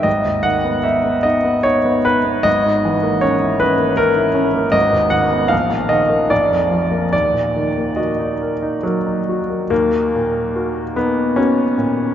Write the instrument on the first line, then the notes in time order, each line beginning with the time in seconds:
grand piano
0.03 G#1 D#5
0.25 D#2
0.43 D#3 F#5
0.64 B3
0.83 D#4 E5
1.05 B3
1.23 D#4 D#5
1.44 B3
1.63 D#4 C#5
1.85 B3
2.05 D#4 B4
2.25 B3
2.43 G#1 D#5
2.65 G#2
2.85 E3
3.03 A#3
3.21 C#4 C#5
3.41 E4
3.60 C#4 B4
3.78 A#3
3.97 C#4 A#4
4.16 E4
4.34 C#4
4.54 A#3
4.72 G#1 D#5
4.92 D#2
5.10 D#3 F#5
5.31 B3
5.48 A#1 F5
5.69 A#2
5.89 D#3 D#5
6.10 A#3
6.30 A#1 D5
6.51 F2
6.71 F3
6.91 A#3
7.13 D#2 D5
7.33 A#2
7.56 D#3
7.78 A#3
7.96 F#4 D#5
8.19 D#4
8.41 A#4
8.62 D#4
8.83 F#3 A#4
9.06 D#4
9.29 F#4
9.50 A#3
9.70 D#2 A#3
10.15 A#2
10.56 F#4 A#4
10.96 B3 D#4
11.36 C#4 F#4 A#4
11.78 A#2